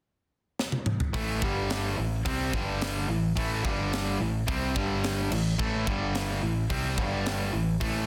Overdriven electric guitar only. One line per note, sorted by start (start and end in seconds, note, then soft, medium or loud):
1.13 1.41 A2 medium
1.13 1.41 E3 loud
1.13 1.42 A3 loud
1.42 1.97 G2 medium
1.42 1.97 D3 medium
1.42 1.97 G3 medium
1.97 2.20 A2 medium
1.97 2.20 E3 medium
2.25 2.52 C3 loud
2.25 2.52 G3 medium
2.25 2.53 C4 loud
2.54 3.08 G2 medium
2.54 3.08 D3 loud
2.54 3.08 G3 loud
3.08 3.31 A2 medium
3.08 3.31 E3 medium
3.35 3.64 A2 medium
3.35 3.65 E3 loud
3.35 3.64 A3 loud
3.64 4.19 G2 medium
3.64 4.19 D3 medium
3.64 4.19 G3 medium
4.20 4.42 A2 medium
4.20 4.42 E3 medium
4.47 4.74 C3 loud
4.47 4.75 G3 loud
4.47 4.75 C4 loud
4.75 5.30 G2 medium
4.75 5.30 D3 loud
4.75 5.30 G3 loud
5.31 5.53 A2 medium
5.31 5.54 E3 medium
5.59 5.86 A2 medium
5.59 5.86 E3 loud
5.59 5.86 A3 loud
5.86 6.41 G2 medium
5.86 6.41 D3 medium
5.86 6.41 G3 medium
6.42 6.64 A2 medium
6.42 6.64 E3 medium
6.70 6.97 C3 medium
6.70 6.97 G3 medium
6.70 6.97 C4 loud
6.97 7.52 G2 medium
6.97 7.52 D3 medium
6.97 7.53 G3 loud
7.52 7.75 A2 medium
7.52 7.75 E3 medium
7.80 8.06 A2 loud
7.80 8.06 E3 loud
7.80 8.06 A3 loud